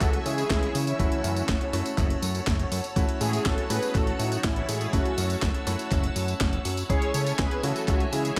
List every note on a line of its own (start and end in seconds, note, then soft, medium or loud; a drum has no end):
0.00 0.19 C#2 medium
0.00 0.96 E3 medium
0.00 0.96 C#4 medium
0.00 0.96 E4 medium
0.00 0.22 F#4 medium
0.00 0.96 F#4 loud
0.00 0.27 A4 loud
0.00 6.86 C#5 medium
0.00 0.97 E5 medium
0.00 0.97 G#5 medium
0.00 2.92 E6 loud
0.00 kick loud
0.00 clap medium
0.00 closed hi-hat medium
0.00 tambourine soft
0.13 closed hi-hat soft
0.25 0.44 C#3 medium
0.25 0.49 E4 medium
0.25 0.49 G#4 loud
0.25 open hi-hat loud
0.25 tambourine medium
0.38 closed hi-hat soft
0.38 tambourine soft
0.50 0.69 C#2 medium
0.50 0.73 E4 medium
0.50 0.76 G#4 loud
0.50 kick loud
0.50 snare loud
0.50 clap medium
0.50 closed hi-hat medium
0.50 tambourine soft
0.63 closed hi-hat soft
0.74 0.93 C#3 medium
0.74 2.19 C#4 medium
0.74 2.18 E4 loud
0.74 open hi-hat loud
0.74 tambourine medium
0.87 closed hi-hat soft
0.87 tambourine soft
0.99 1.09 F#1 loud
0.99 1.70 A3 medium
0.99 1.70 C#4 medium
0.99 1.70 E4 medium
0.99 1.70 F#4 loud
0.99 6.85 F#5 medium
0.99 4.89 A5 medium
0.99 kick loud
0.99 closed hi-hat medium
0.99 tambourine soft
1.12 closed hi-hat soft
1.24 1.42 F#2 loud
1.24 open hi-hat loud
1.24 tambourine medium
1.36 closed hi-hat soft
1.36 tambourine soft
1.48 1.58 F#1 medium
1.48 kick loud
1.48 snare loud
1.48 clap medium
1.48 closed hi-hat medium
1.48 tambourine soft
1.61 closed hi-hat soft
1.73 1.82 F#2 medium
1.73 2.93 A3 medium
1.73 2.93 C#4 medium
1.73 2.93 E4 medium
1.73 2.93 F#4 medium
1.73 open hi-hat loud
1.73 tambourine medium
1.86 closed hi-hat soft
1.86 tambourine soft
1.98 2.16 F#1 medium
1.98 kick loud
1.98 clap medium
1.98 closed hi-hat medium
1.98 tambourine soft
2.10 closed hi-hat soft
2.22 2.41 F#2 medium
2.22 open hi-hat loud
2.22 tambourine medium
2.35 closed hi-hat soft
2.35 tambourine soft
2.47 2.65 F#1 loud
2.47 kick loud
2.47 snare loud
2.47 clap medium
2.47 closed hi-hat medium
2.47 tambourine soft
2.59 closed hi-hat soft
2.71 2.81 F#2 loud
2.71 open hi-hat loud
2.71 tambourine medium
2.84 closed hi-hat soft
2.84 tambourine soft
2.96 3.05 A1 loud
2.96 3.67 A3 medium
2.96 3.67 C#4 medium
2.96 3.67 E4 medium
2.96 3.67 F#4 loud
2.96 8.40 E6 loud
2.96 kick loud
2.96 closed hi-hat medium
2.96 tambourine soft
3.09 closed hi-hat soft
3.20 3.39 A2 loud
3.20 3.44 E4 medium
3.20 3.46 G#4 loud
3.20 open hi-hat loud
3.20 tambourine medium
3.33 closed hi-hat soft
3.33 tambourine soft
3.45 3.54 A1 medium
3.45 3.69 F#4 medium
3.45 3.68 A4 loud
3.45 kick loud
3.45 snare loud
3.45 clap medium
3.45 closed hi-hat medium
3.58 closed hi-hat soft
3.70 3.79 A2 medium
3.70 4.90 A3 medium
3.70 4.90 C#4 medium
3.70 4.90 E4 medium
3.70 4.90 F#4 loud
3.70 3.93 G#4 medium
3.70 3.95 B4 loud
3.70 open hi-hat loud
3.70 tambourine medium
3.82 closed hi-hat soft
3.82 tambourine soft
3.94 4.13 A1 medium
3.94 4.18 F#4 medium
3.94 4.20 A4 loud
3.94 kick loud
3.94 clap medium
3.94 closed hi-hat medium
3.94 tambourine soft
4.07 closed hi-hat soft
4.19 4.37 A2 medium
4.19 4.42 D#4 medium
4.19 4.44 F#4 loud
4.19 open hi-hat loud
4.19 tambourine medium
4.32 closed hi-hat soft
4.32 tambourine soft
4.43 4.62 A1 medium
4.43 4.67 C#4 medium
4.43 4.67 E4 loud
4.43 kick loud
4.43 snare loud
4.43 clap medium
4.43 closed hi-hat medium
4.43 tambourine soft
4.56 closed hi-hat soft
4.68 4.87 A2 medium
4.68 4.91 E4 medium
4.68 4.93 G#4 loud
4.68 open hi-hat loud
4.68 tambourine medium
4.81 closed hi-hat soft
4.81 tambourine soft
4.93 5.02 F#1 loud
4.93 5.64 A3 medium
4.93 5.64 C#4 medium
4.93 5.39 C#4 medium
4.93 5.64 E4 medium
4.93 5.38 F#4 medium
4.93 5.64 F#4 loud
4.93 6.88 A5 medium
4.93 kick loud
4.93 closed hi-hat medium
4.93 tambourine soft
5.05 closed hi-hat soft
5.18 5.36 F#2 loud
5.18 open hi-hat loud
5.18 tambourine medium
5.30 closed hi-hat soft
5.30 tambourine soft
5.42 5.51 F#1 medium
5.42 kick loud
5.42 snare loud
5.42 clap medium
5.42 closed hi-hat medium
5.42 tambourine soft
5.54 closed hi-hat soft
5.67 5.76 F#2 medium
5.67 6.87 A3 medium
5.67 6.87 C#4 medium
5.67 6.87 E4 medium
5.67 6.87 F#4 loud
5.67 open hi-hat loud
5.67 tambourine medium
5.79 closed hi-hat soft
5.79 tambourine soft
5.91 6.10 F#1 medium
5.91 kick loud
5.91 clap soft
5.91 closed hi-hat medium
5.91 tambourine soft
6.04 closed hi-hat soft
6.16 6.34 F#2 medium
6.16 open hi-hat loud
6.16 tambourine medium
6.28 closed hi-hat soft
6.28 tambourine soft
6.40 6.59 F#1 loud
6.40 kick loud
6.40 snare loud
6.40 clap medium
6.40 closed hi-hat medium
6.40 tambourine soft
6.53 closed hi-hat soft
6.65 6.83 F#2 medium
6.65 open hi-hat loud
6.65 tambourine medium
6.77 closed hi-hat soft
6.77 tambourine soft
6.89 6.99 C#2 loud
6.89 7.60 G#3 medium
6.89 7.60 C#4 medium
6.89 7.60 E4 medium
6.89 7.60 G#4 loud
6.89 7.13 G#4 medium
6.89 7.12 C#5 loud
6.89 8.40 C#5 medium
6.89 8.40 E5 medium
6.89 8.40 G#5 medium
6.89 kick loud
6.89 closed hi-hat medium
6.89 tambourine soft
7.02 closed hi-hat soft
7.14 7.32 C#3 loud
7.14 7.37 A4 medium
7.14 7.37 C#5 loud
7.14 open hi-hat loud
7.14 tambourine medium
7.27 closed hi-hat soft
7.27 tambourine soft
7.38 7.48 C#2 medium
7.38 7.62 G#4 medium
7.38 7.61 B4 loud
7.38 kick loud
7.38 snare loud
7.38 clap medium
7.38 closed hi-hat medium
7.38 tambourine soft
7.51 closed hi-hat soft
7.63 7.72 C#3 medium
7.63 8.40 E3 medium
7.63 8.40 C#4 medium
7.63 8.40 E4 medium
7.63 8.40 F#4 medium
7.63 8.09 F#4 medium
7.63 8.09 A4 loud
7.63 open hi-hat loud
7.63 tambourine medium
7.76 closed hi-hat soft
7.76 tambourine soft
7.88 8.06 C#2 medium
7.88 kick loud
7.88 clap medium
7.88 closed hi-hat medium
7.88 tambourine soft
8.00 closed hi-hat soft
8.12 8.31 C#3 medium
8.12 8.36 E4 medium
8.12 8.36 G#4 loud
8.12 open hi-hat loud
8.12 tambourine medium
8.25 closed hi-hat soft
8.25 tambourine soft